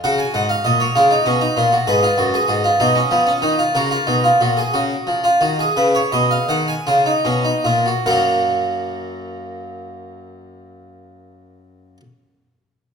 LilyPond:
<<
  \new Staff \with { instrumentName = "Harpsichord" } { \time 12/8 \key fis \major \tempo 4. = 56 << { fis''16 gis''16 fis''16 eis''16 dis''16 cis''4.~ cis''16 b'4. dis''4. | ais'2. b'16 cis''16 dis''16 eis''16 fis''16 gis''4.~ gis''16 | <fis ais fis''>1. | } \\ { fis'4. eis'16 dis'16 cis'16 dis'16 eis'16 fis'16 gis'16 eis'16 fis'16 gis'16 fis'16 eis'16 dis'16 cis'16 b16 cis'16 dis'16 eis'16 | fis'16 eis'16 dis'16 eis'16 fis'16 gis'16 fis'8. eis'16 fis'16 gis'4.~ gis'16 eis'16 dis'16 cis'16 dis'16 eis'16 fis'16 | ais'1. | } >> }
  \new Staff \with { instrumentName = "Harpsichord" } { \clef bass \time 12/8 \key fis \major cis8 gis,8 ais,8 cis8 b,8 ais,8 gis,8 fis,8 gis,8 b,8 eis8 dis8 | cis8 b,8 ais,8 cis8 eis8 dis8 cis8 b,8 dis8 cis8 b,8 ais,8 | fis,1. | }
>>